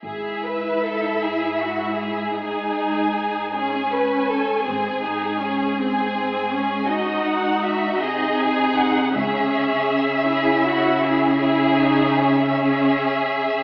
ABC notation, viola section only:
X:1
M:12/8
L:1/8
Q:3/8=53
K:C#m
V:1 name="Viola section"
E6 D3 C3 | ^B, D C B, B, C D3 D3 | C3 E3 E D C4 |]